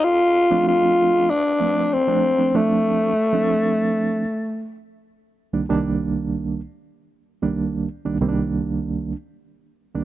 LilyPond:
<<
  \new Staff \with { instrumentName = "Tenor saxophone" } { \time 4/4 \key c \dorian \tempo 4 = 95 f'4 f'4 d'4 c'4 | a2.~ a8 r8 | r1 | r1 | }
  \new Staff \with { instrumentName = "Reed electric piano" } { \time 4/4 \key c \dorian r8. <f a c' d'>4~ <f a c' d'>16 r8 <f a c' d'>8 r16 <f a c' d'>16 r16 <f a c' d'>16 | <f a c' d'>4 r16 <f a c' d'>4. r4 r16 | r8. <c, ees g bes d'>16 <c, ees g bes d'>4. r4 r16 <c, ees g bes d'>16~ | <c, ees g bes d'>8 r16 <c, ees g bes d'>16 <c, ees g bes c' d'>4. r4 r16 <c, ees g bes d'>16 | }
>>